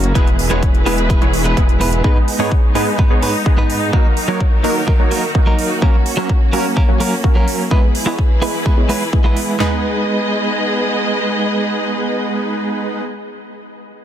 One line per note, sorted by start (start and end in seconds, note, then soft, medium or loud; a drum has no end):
0.00 0.13 F#1 loud
0.00 0.12 F#3 medium
0.00 0.12 A#3 medium
0.00 0.13 A#3 medium
0.00 0.12 C#4 medium
0.00 0.13 C#4 medium
0.00 0.11 F#4 medium
0.00 0.12 F#4 medium
0.00 0.12 A#4 medium
0.00 0.13 A#4 loud
0.00 closed hi-hat soft
0.15 0.48 E1 medium
0.15 2.02 E3 medium
0.15 0.28 G#3 medium
0.15 0.48 G#3 medium
0.15 0.28 B3 medium
0.15 0.48 B3 medium
0.15 2.02 E4 medium
0.15 0.28 E4 medium
0.15 0.48 E4 medium
0.15 0.48 G#4 medium
0.15 2.02 G#4 medium
0.15 2.02 B4 medium
0.15 0.48 B4 loud
0.15 0.29 B4 medium
0.15 kick loud
0.15 closed hi-hat medium
0.27 closed hi-hat soft
0.39 open hi-hat loud
0.50 0.84 E1 medium
0.50 0.63 G#3 medium
0.50 0.83 G#3 medium
0.50 0.64 B3 medium
0.50 0.83 B3 medium
0.50 0.83 E4 medium
0.50 0.64 E4 medium
0.50 0.83 G#4 medium
0.50 0.64 B4 loud
0.50 0.83 C#5 loud
0.50 closed hi-hat soft
0.63 kick loud
0.63 closed hi-hat medium
0.74 closed hi-hat soft
0.86 1.19 E1 medium
0.86 0.99 G#3 medium
0.86 1.19 G#3 medium
0.86 0.99 B3 medium
0.86 1.19 B3 medium
0.86 1.19 E4 medium
0.86 0.99 E4 medium
0.86 1.19 G#4 medium
0.86 1.19 B4 loud
0.86 0.99 B4 loud
0.86 open hi-hat medium
0.98 closed hi-hat soft
1.09 1.22 G#3 medium
1.09 1.23 B3 medium
1.09 1.23 E4 medium
1.09 1.23 B4 medium
1.09 kick loud
1.09 closed hi-hat medium
1.22 1.55 E1 loud
1.22 1.42 G#3 medium
1.22 1.42 B3 medium
1.22 1.42 E4 medium
1.22 1.42 G#4 medium
1.22 1.42 C#5 medium
1.22 closed hi-hat soft
1.34 open hi-hat loud
1.44 1.58 G#3 medium
1.44 1.58 B3 medium
1.44 1.58 E4 medium
1.44 1.58 B4 loud
1.44 closed hi-hat soft
1.57 2.02 E1 medium
1.57 2.01 G#3 medium
1.57 2.01 B3 medium
1.57 2.01 E4 medium
1.57 2.01 G#4 medium
1.57 2.01 B4 loud
1.57 kick loud
1.57 closed hi-hat medium
1.69 closed hi-hat soft
1.80 2.01 G#2 medium
1.80 2.01 G#3 medium
1.80 2.01 B3 medium
1.80 2.02 E4 medium
1.80 2.02 B4 loud
1.80 open hi-hat medium
1.93 closed hi-hat soft
2.04 2.17 G#2 medium
2.04 2.17 G#3 medium
2.04 2.37 G#3 medium
2.04 3.91 G#3 medium
2.04 2.37 B3 medium
2.04 3.91 B3 medium
2.04 2.17 B3 medium
2.04 2.17 D#4 medium
2.04 2.37 D#4 medium
2.04 5.79 D#4 medium
2.04 2.37 G#4 medium
2.04 2.37 B4 medium
2.04 2.18 B4 loud
2.04 kick loud
2.28 open hi-hat loud
2.39 2.52 G#2 loud
2.39 2.72 G#3 medium
2.39 2.53 G#3 medium
2.39 2.72 B3 medium
2.39 2.53 B3 medium
2.39 2.72 D#4 medium
2.39 2.53 D#4 medium
2.39 2.72 G#4 medium
2.39 2.53 B4 loud
2.39 2.72 C#5 loud
2.52 kick loud
2.75 2.88 G#2 medium
2.75 3.08 G#3 medium
2.75 2.88 G#3 medium
2.75 3.08 B3 medium
2.75 2.88 B3 medium
2.75 3.08 D#4 medium
2.75 2.88 D#4 medium
2.75 3.08 G#4 medium
2.75 3.08 B4 loud
2.75 2.88 B4 medium
2.75 open hi-hat medium
2.98 3.11 G#2 medium
2.98 3.12 G#3 soft
2.98 3.12 B3 medium
2.98 3.12 D#4 medium
2.98 3.12 B4 medium
2.98 kick loud
3.11 3.31 G#3 medium
3.11 3.31 B3 medium
3.11 3.31 D#4 medium
3.11 3.31 G#4 medium
3.11 3.31 C#5 medium
3.22 3.35 G#2 medium
3.22 3.35 G#3 medium
3.22 3.35 B3 medium
3.22 3.36 D#4 medium
3.22 3.36 B4 medium
3.22 open hi-hat loud
3.46 3.90 G#3 medium
3.46 3.90 B3 medium
3.46 3.90 D#4 medium
3.46 3.90 G#4 medium
3.46 3.90 B4 medium
3.46 kick loud
3.57 3.90 G#2 medium
3.57 3.90 G#3 medium
3.57 3.90 B3 medium
3.57 3.91 D#4 medium
3.57 3.91 B4 loud
3.70 open hi-hat medium
3.93 5.80 D#3 medium
3.93 4.06 F#3 medium
3.93 4.26 F#3 medium
3.93 4.26 A#3 medium
3.93 4.06 A#3 medium
3.93 4.26 D#4 medium
3.93 4.06 D#4 medium
3.93 4.26 F#4 medium
3.93 7.67 F#4 medium
3.93 4.26 A#4 medium
3.93 5.80 A#4 medium
3.93 4.07 A#4 medium
3.93 kick loud
4.17 open hi-hat loud
4.28 4.41 F#3 medium
4.28 4.61 F#3 medium
4.28 4.61 A#3 medium
4.28 4.42 A#3 medium
4.28 4.61 D#4 medium
4.28 4.42 D#4 medium
4.28 4.61 F#4 medium
4.28 4.42 A#4 loud
4.28 4.61 C#5 loud
4.40 kick loud
4.63 4.77 F#3 medium
4.63 4.97 F#3 medium
4.63 4.77 A#3 medium
4.63 4.97 A#3 medium
4.63 4.97 D#4 medium
4.63 4.77 D#4 medium
4.63 4.97 F#4 medium
4.63 4.97 A#4 loud
4.63 4.77 A#4 loud
4.63 open hi-hat medium
4.87 5.00 F#3 medium
4.87 5.01 A#3 medium
4.87 5.01 D#4 medium
4.87 5.01 A#4 medium
4.87 kick loud
4.99 5.20 F#3 medium
4.99 5.20 A#3 medium
4.99 5.20 D#4 medium
4.99 5.20 F#4 medium
4.99 5.20 C#5 medium
5.11 5.24 F#3 medium
5.11 5.24 A#3 medium
5.11 5.24 D#4 medium
5.11 5.25 A#4 medium
5.11 open hi-hat loud
5.35 5.79 F#3 medium
5.35 5.79 A#3 medium
5.35 5.79 D#4 medium
5.35 5.79 F#4 medium
5.35 5.79 A#4 medium
5.35 kick loud
5.46 5.79 F#3 medium
5.46 5.79 A#3 medium
5.46 5.79 D#4 medium
5.46 5.80 A#4 medium
5.59 open hi-hat medium
5.82 5.95 F#3 medium
5.82 6.15 F#3 medium
5.82 5.95 A#3 medium
5.82 6.15 A#3 medium
5.82 7.69 A#3 medium
5.82 6.15 C#4 medium
5.82 5.95 C#4 medium
5.82 7.69 C#4 medium
5.82 6.15 F#4 medium
5.82 6.15 A#4 loud
5.82 5.95 A#4 medium
5.82 kick loud
6.06 open hi-hat medium
6.17 6.30 F#3 loud
6.17 6.50 F#3 medium
6.17 6.50 A#3 medium
6.17 6.31 A#3 medium
6.17 6.31 C#4 medium
6.17 6.50 C#4 medium
6.17 6.50 F#4 medium
6.17 6.31 A#4 loud
6.17 6.50 C#5 loud
6.29 kick loud
6.52 6.66 F#3 medium
6.52 6.86 F#3 medium
6.52 6.66 A#3 medium
6.52 6.86 A#3 medium
6.52 6.86 C#4 medium
6.52 6.66 C#4 medium
6.52 6.86 F#4 medium
6.52 6.86 A#4 loud
6.52 6.66 A#4 medium
6.52 open hi-hat medium
6.76 6.89 F#3 medium
6.76 6.90 A#3 medium
6.76 6.90 C#4 medium
6.76 6.90 A#4 medium
6.76 kick loud
6.88 7.09 F#3 medium
6.88 7.09 A#3 medium
6.88 7.09 C#4 medium
6.88 7.09 F#4 medium
6.88 7.09 C#5 medium
7.00 7.13 F#3 medium
7.00 7.13 A#3 medium
7.00 7.13 C#4 medium
7.00 7.14 A#4 loud
7.00 open hi-hat loud
7.24 7.68 F#3 medium
7.24 7.68 A#3 medium
7.24 7.68 C#4 medium
7.24 7.68 F#4 medium
7.24 7.68 A#4 medium
7.24 kick loud
7.35 7.68 F#3 medium
7.35 7.68 A#3 medium
7.35 7.69 C#4 medium
7.35 7.69 A#4 medium
7.48 open hi-hat medium
7.71 9.58 E3 medium
7.71 7.84 G#3 medium
7.71 8.04 G#3 medium
7.71 8.04 B3 medium
7.71 7.84 B3 medium
7.71 8.04 E4 medium
7.71 9.58 E4 medium
7.71 7.84 E4 medium
7.71 8.04 G#4 medium
7.71 9.58 G#4 medium
7.71 8.04 B4 loud
7.71 9.58 B4 medium
7.71 7.85 B4 medium
7.71 kick loud
7.95 open hi-hat loud
8.06 8.19 G#3 loud
8.06 8.39 G#3 medium
8.06 8.39 B3 medium
8.06 8.20 B3 medium
8.06 8.39 E4 medium
8.06 8.20 E4 medium
8.06 8.39 G#4 medium
8.06 8.20 B4 loud
8.06 8.39 C#5 loud
8.19 kick loud
8.42 8.55 G#3 medium
8.42 8.75 G#3 medium
8.42 8.55 B3 medium
8.42 8.75 B3 medium
8.42 8.75 E4 medium
8.42 8.55 E4 medium
8.42 8.75 G#4 medium
8.42 8.75 B4 loud
8.42 8.55 B4 medium
8.42 open hi-hat medium
8.65 8.78 G#3 medium
8.65 8.79 B3 soft
8.65 8.79 E4 medium
8.65 8.79 B4 medium
8.65 kick loud
8.78 8.98 G#3 medium
8.78 8.98 B3 medium
8.78 8.98 E4 medium
8.78 8.98 G#4 medium
8.78 8.98 C#5 medium
8.89 9.02 G#3 medium
8.89 9.02 B3 medium
8.89 9.02 E4 medium
8.89 9.03 B4 medium
8.89 open hi-hat loud
9.13 9.57 G#3 medium
9.13 9.57 B3 medium
9.13 9.57 E4 medium
9.13 9.57 G#4 medium
9.13 9.57 B4 medium
9.13 kick loud
9.24 9.57 G#3 medium
9.24 9.57 B3 medium
9.24 9.57 E4 medium
9.24 9.58 B4 medium
9.37 open hi-hat medium
9.58 13.00 G#3 medium
9.58 13.02 G#3 medium
9.58 13.01 B3 medium
9.58 13.02 B3 medium
9.58 13.02 D#4 medium
9.58 13.02 G#4 medium
9.58 13.02 B4 medium
9.58 13.04 B4 medium
9.58 13.02 D#5 medium
9.58 snare loud
9.58 clap medium
9.58 floor tom loud